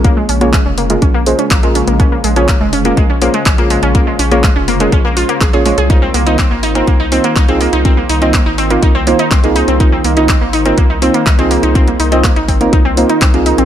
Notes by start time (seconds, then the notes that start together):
Already playing: A#1 C#3 G#3 A#3 F4
0.04 A#3 C#4 F4 G#4 A#4, kick, closed hi-hat
0.17 G#3
0.29 A#1 C#4, open hi-hat
0.41 A#3 C#4 F4 G#4 C#5, closed hi-hat
0.53 G#3, kick, clap, closed hi-hat
0.66 F1 C#4
0.78 A#3, open hi-hat
0.90 G#3 A#3 C#4 F4 G#4 A#4, closed hi-hat
1.02 A#1 C#4, kick, closed hi-hat
1.14 A#3
1.26 G#3 A#3 C#4 F4 G#4 C5, open hi-hat
1.39 C#4, closed hi-hat
1.51 A#1 A#3, kick, clap, closed hi-hat
1.63 G#3 A#3 C#4 F4 G#4 A#4, closed hi-hat
1.75 C#4, open hi-hat
1.88 A#1 A#3, closed hi-hat
2.00 A#3 C#4 F4 G#4 A#4 C5, kick, closed hi-hat
2.12 A#3
2.24 A#1 G#3, open hi-hat
2.36 A#3 C#4 F4 G#4 C#5, closed hi-hat
2.48 A#3, kick, clap, closed hi-hat
2.61 F1 G#3
2.73 C#4, open hi-hat
2.85 A#3 C#4 F4 G#4 A#4, closed hi-hat
2.97 A#1 G#3, kick, closed hi-hat
3.10 C#4
3.22 A#3 C#4 F4 G#4 C5, open hi-hat
3.34 G#3, closed hi-hat
3.46 A#1 C#4, kick, clap, closed hi-hat
3.58 A#3 C#4 F4 G#4 A#4, closed hi-hat
3.70 G#3, open hi-hat
3.83 A#1 C#4, closed hi-hat
3.95 A#3 C#4 F4 G#4 A#4, kick, closed hi-hat
4.07 G#3
4.19 A#1 C#4, open hi-hat
4.31 A#3 C#4 F4 G#4 C#5, closed hi-hat
4.44 G#3, kick, clap, closed hi-hat
4.56 F1 C#4
4.68 A#3, open hi-hat
4.80 G#3 A#3 C#4 F4 G#4 A#4, closed hi-hat
4.92 A#1 C#4, kick, closed hi-hat
5.05 A#3
5.17 F4, open hi-hat
5.29 A#3, closed hi-hat
5.41 A#1 G#4, kick, clap, closed hi-hat
5.53 A#3 C#4 F4 G#4 C#5, closed hi-hat
5.66 G#3 A#3 C#4 F4 G#4 C#5, open hi-hat
5.78 C2 G#4, closed hi-hat
5.90 D#3 A#3 C4 D#4 F4 A#4, kick, closed hi-hat
6.02 C4
6.14 C2 A#3, open hi-hat
6.27 A#3 C4 D#4 F4 D#5, closed hi-hat
6.39 C4, kick, clap, closed hi-hat
6.51 G#1 A#3
6.63 D#4, open hi-hat
6.75 A#3 C4 D#4 F4 A#4, closed hi-hat
6.87 C2 A#3, kick, closed hi-hat
7.00 D#4
7.12 A#3 C4 D#4 F4 C5, open hi-hat
7.24 A#3, closed hi-hat
7.36 C2 D#4, kick, clap, closed hi-hat
7.48 A#3 C4 D#4 F4 G#4, closed hi-hat
7.61 A#3, open hi-hat
7.73 C2 D#4, closed hi-hat
7.85 A#3 C4 D#4 F4 A#4, kick, closed hi-hat
7.97 A#3
8.09 C2 D#4, open hi-hat
8.22 A#3 C4 D#4 F4 D#5, closed hi-hat
8.34 A#3, kick, clap, closed hi-hat
8.46 G#1 D#4
8.58 C4, open hi-hat
8.70 A#3 C4 D#4 F4 A#4, closed hi-hat
8.83 C2 D#4, kick, closed hi-hat
8.95 C4
9.07 A#3 C4 D#4 F4 C5, open hi-hat
9.19 D#4, closed hi-hat
9.31 C2 C4, kick, clap, closed hi-hat
9.44 A#3 C4 D#4 F4 G#4, closed hi-hat
9.56 D#4, open hi-hat
9.68 C2 C4, closed hi-hat
9.80 A#3 C4 D#4 F4 A#4, kick, closed hi-hat
9.92 C4
10.04 C2 A#3, open hi-hat
10.17 A#3 C4 D#4 F4 D#5, closed hi-hat
10.29 C4, kick, clap, closed hi-hat
10.41 G#1 A#3
10.53 D#4, open hi-hat
10.65 A#3 C4 D#4 F4 A#4, closed hi-hat
10.78 C2 A#3, kick, closed hi-hat
10.90 D#4
11.02 A#3 C4 D#4 F4 C5, open hi-hat
11.14 A#3, closed hi-hat
11.26 C2 D#4, kick, clap, closed hi-hat
11.39 A#3 C4 D#4 F4 G#4, closed hi-hat
11.51 A#3, open hi-hat
11.63 C2 D#4, closed hi-hat
11.75 A#3 C4 D#4 F4 A#4, kick, closed hi-hat
11.87 A#3, closed hi-hat
12.00 C2 D#4, open hi-hat
12.12 A#3 C4 D#4 F4 D#5, closed hi-hat
12.24 A#3, kick, clap, closed hi-hat
12.36 G#1 D#4, closed hi-hat
12.48 C4, kick, open hi-hat
12.61 A#3 C4 D#4 F4 A#4, closed hi-hat
12.73 C2 D#4, kick, closed hi-hat
12.85 C4
12.97 A#3 C4 D#4 F4 C5, open hi-hat
13.09 D#4, closed hi-hat
13.22 C2 C4, kick, clap, closed hi-hat
13.34 A#3 C4 D#4 F4 G#4, closed hi-hat
13.46 D#4, open hi-hat
13.58 A#1 C4, closed hi-hat